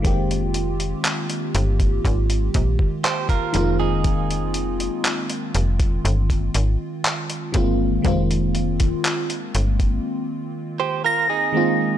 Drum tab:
HH |xxxxxxxxxxx-xxx-|xxxxxxxxxxx-xxx-|xxxxxxxx--------|
CP |----x-------x---|----x-------x---|----x-----------|
BD |o------oo-oo-o--|o------o-o----o-|o--o---o--------|